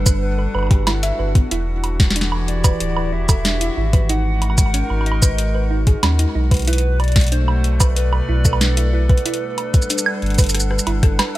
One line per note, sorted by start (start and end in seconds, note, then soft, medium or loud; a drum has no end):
0.00 0.47 G1 loud
0.00 1.51 G3 medium
0.00 2.55 D4 medium
0.00 2.35 A4 medium
0.00 0.22 B4 loud
0.00 9.26 F#5 medium
0.06 7.71 F#4 medium
0.06 0.15 B4 loud
0.06 kick loud
0.06 shaker medium
0.22 1.15 B4 medium
0.39 0.47 B4 medium
0.55 1.12 G1 medium
0.55 0.63 B4 medium
0.55 high woodblock soft
0.59 high woodblock soft
0.63 high woodblock soft
0.67 high woodblock soft
0.71 0.84 G4 medium
0.71 kick loud
0.71 closed hi-hat soft
0.71 high woodblock soft
0.75 high woodblock soft
0.79 high woodblock soft
0.83 high woodblock soft
0.87 1.00 E4 loud
0.87 snare loud
0.87 closed hi-hat medium
0.87 high woodblock medium
1.03 1.12 E5 loud
1.03 closed hi-hat medium
1.19 1.42 G1 medium
1.19 1.32 B4 medium
1.35 1.44 B3 medium
1.35 kick loud
1.35 closed hi-hat medium
1.51 2.73 E1 loud
1.51 4.09 E3 medium
1.51 1.64 E4 loud
1.51 closed hi-hat medium
1.76 4.09 E4 medium
1.84 closed hi-hat soft
1.84 high woodblock soft
2.00 4.09 G4 medium
2.00 kick loud
2.00 snare loud
2.00 closed hi-hat medium
2.11 snare medium
2.16 2.24 D4 medium
2.16 closed hi-hat medium
2.21 snare medium
2.32 high woodblock soft
2.48 3.14 D5 loud
2.48 closed hi-hat soft
2.64 2.73 B4 loud
2.64 kick loud
2.64 closed hi-hat soft
2.64 high woodblock medium
2.64 shaker medium
2.80 3.14 D1 medium
2.80 closed hi-hat medium
2.97 3.05 B4 medium
2.97 high woodblock soft
3.13 3.70 E1 loud
3.13 3.21 E4 medium
3.13 4.09 E5 loud
3.29 3.37 A4 medium
3.29 kick loud
3.29 closed hi-hat medium
3.29 high woodblock medium
3.29 shaker medium
3.45 3.53 D4 medium
3.45 snare loud
3.45 closed hi-hat medium
3.61 3.66 E4 medium
3.61 closed hi-hat medium
3.77 4.83 G#1 loud
3.77 3.86 E4 medium
3.93 4.02 B4 loud
3.93 kick loud
3.93 closed hi-hat medium
4.09 6.68 G#3 medium
4.09 4.22 D#4 loud
4.09 5.02 F#5 loud
4.09 closed hi-hat medium
4.32 6.67 A#4 medium
4.36 6.67 D#4 medium
4.42 closed hi-hat soft
4.42 high woodblock soft
4.50 high woodblock soft
4.58 kick loud
4.58 closed hi-hat medium
4.58 high woodblock soft
4.58 shaker medium
4.66 high woodblock soft
4.74 4.83 C#4 medium
4.74 closed hi-hat medium
4.90 5.96 G#1 medium
4.90 high woodblock soft
5.01 high woodblock soft
5.06 5.67 D#5 loud
5.06 closed hi-hat soft
5.12 high woodblock soft
5.22 5.31 B4 loud
5.22 kick loud
5.22 shaker medium
5.38 closed hi-hat medium
5.55 5.63 B4 medium
5.71 5.79 D#4 medium
5.87 5.95 G#4 medium
5.87 kick loud
5.87 closed hi-hat medium
6.03 6.26 D#2 medium
6.03 6.12 C#4 medium
6.03 snare loud
6.03 closed hi-hat medium
6.03 high woodblock medium
6.19 6.24 D#4 medium
6.19 closed hi-hat medium
6.35 8.21 B1 medium
6.35 6.44 D#4 medium
6.51 6.60 B4 loud
6.51 kick loud
6.51 closed hi-hat soft
6.54 closed hi-hat soft
6.57 closed hi-hat soft
6.59 closed hi-hat soft
6.62 closed hi-hat soft
6.65 closed hi-hat soft
6.67 9.26 B2 medium
6.67 6.80 E4 loud
6.67 7.01 B4 loud
6.67 closed hi-hat medium
6.73 closed hi-hat medium
6.78 closed hi-hat soft
7.00 10.29 A3 medium
7.00 7.31 D5 loud
7.00 closed hi-hat soft
7.00 high woodblock soft
7.04 11.38 A4 medium
7.04 closed hi-hat soft
7.08 closed hi-hat soft
7.12 closed hi-hat soft
7.16 kick loud
7.16 snare loud
7.16 closed hi-hat soft
7.20 closed hi-hat soft
7.24 closed hi-hat soft
7.27 closed hi-hat soft
7.32 7.41 D4 medium
7.32 7.93 C5 loud
7.32 closed hi-hat medium
7.48 high woodblock medium
7.55 10.29 D5 medium
7.64 closed hi-hat soft
7.80 7.89 B4 loud
7.80 kick loud
7.80 closed hi-hat soft
7.80 high woodblock medium
7.80 shaker medium
7.96 8.89 B4 loud
7.96 closed hi-hat medium
8.13 8.21 B4 medium
8.13 high woodblock medium
8.29 9.18 B1 medium
8.29 8.37 E4 medium
8.45 8.53 A4 medium
8.45 kick loud
8.45 shaker medium
8.53 high woodblock medium
8.61 8.70 D4 medium
8.61 snare loud
8.61 closed hi-hat medium
8.77 8.82 E4 medium
8.77 closed hi-hat medium
8.93 9.02 E4 medium
8.93 11.38 B4 loud
9.09 9.18 B4 loud
9.09 kick loud
9.09 closed hi-hat soft
9.18 closed hi-hat soft
9.26 11.38 G3 medium
9.26 9.38 E4 loud
9.26 closed hi-hat medium
9.34 closed hi-hat soft
9.43 11.38 D4 medium
9.58 closed hi-hat soft
9.58 high woodblock soft
9.65 11.38 F#5 medium
9.74 kick loud
9.74 closed hi-hat medium
9.74 shaker soft
9.82 shaker soft
9.90 9.99 D4 medium
9.90 closed hi-hat medium
9.90 shaker soft
9.98 shaker medium
10.06 11.38 B4 medium
10.06 high woodblock medium
10.22 10.79 G1 loud
10.22 closed hi-hat soft
10.26 closed hi-hat soft
10.30 closed hi-hat soft
10.34 closed hi-hat soft
10.38 10.47 B4 loud
10.38 kick loud
10.38 closed hi-hat soft
10.38 shaker medium
10.42 closed hi-hat soft
10.46 closed hi-hat soft
10.49 closed hi-hat soft
10.49 shaker medium
10.55 cross-stick medium
10.55 closed hi-hat medium
10.60 shaker medium
10.71 10.79 B4 medium
10.71 cross-stick medium
10.79 shaker medium
10.87 11.19 G1 medium
10.87 10.95 E4 medium
10.87 closed hi-hat soft
10.87 high woodblock soft
11.03 11.12 A4 loud
11.03 kick loud
11.03 cross-stick medium
11.03 closed hi-hat medium
11.19 11.32 B4 medium
11.19 cross-stick medium
11.19 snare loud
11.19 closed hi-hat medium
11.19 high woodblock medium